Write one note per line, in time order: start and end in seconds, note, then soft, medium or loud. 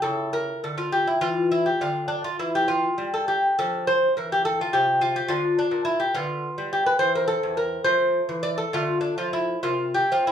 0.02 0.51 C#3 medium
0.02 0.77 E4 soft
0.02 0.32 A4 medium
0.33 0.62 A#4 medium
0.64 1.11 D3 soft
0.64 0.79 A4 medium
0.78 0.93 F4 medium
0.92 1.08 G4 medium
1.07 1.21 E4 medium
1.21 1.69 E3 medium
1.21 1.50 F4 medium
1.52 1.66 E4 medium
1.66 1.81 G4 medium
1.81 2.28 D3 medium
1.81 2.07 D4 soft
1.81 2.07 F4 medium
2.08 2.23 D4 medium
2.24 2.39 F4 medium
2.39 2.87 E3 medium
2.39 2.54 E4 medium
2.55 2.69 G4 medium
2.68 3.11 F4 medium
2.98 3.45 G3 medium
3.14 3.28 A4 medium
3.28 3.56 G4 medium
3.59 4.06 F3 medium
3.59 5.27 D4 soft
3.59 3.86 A4 medium
3.87 4.15 C5 medium
4.17 4.63 E3 medium
4.17 4.31 A#4 medium
4.32 4.45 G4 medium
4.45 4.59 A4 medium
4.61 4.74 F4 medium
4.73 5.19 C3 medium
4.73 5.01 G4 medium
5.01 5.16 F4 medium
5.16 5.30 G4 medium
5.28 5.64 D3 medium
5.28 5.57 D4 soft
5.28 5.56 F4 medium
5.59 5.84 D4 medium
5.71 6.06 A#2 medium
5.85 6.00 E4 medium
6.00 6.14 G4 medium
6.14 6.49 D3 medium
6.14 6.97 B3 soft
6.14 6.69 F4 medium
6.58 6.92 G3 medium
6.73 6.86 G4 medium
6.86 6.99 B4 medium
6.99 7.35 E3 medium
6.99 7.83 C4 soft
6.99 7.14 C5 loud
7.15 7.27 A#4 medium
7.28 7.56 A4 medium
7.43 7.78 E2 medium
7.57 7.84 A#4 medium
7.84 8.20 F3 medium
7.84 8.68 A3 soft
7.84 8.40 C5 loud
8.29 8.63 E3 medium
8.43 8.57 D5 medium
8.58 8.72 A4 medium
8.73 9.09 D3 medium
8.73 9.60 A3 soft
8.73 9.00 F4 medium
9.01 9.17 D4 medium
9.18 9.55 F3 medium
9.18 9.33 F4 medium
9.33 9.62 E4 medium
9.63 10.01 C3 medium
9.63 10.32 A#3 soft
9.63 9.93 F4 medium
9.94 10.10 G4 medium
10.11 10.32 C4 medium
10.11 10.27 F4 medium
10.27 10.32 E4 medium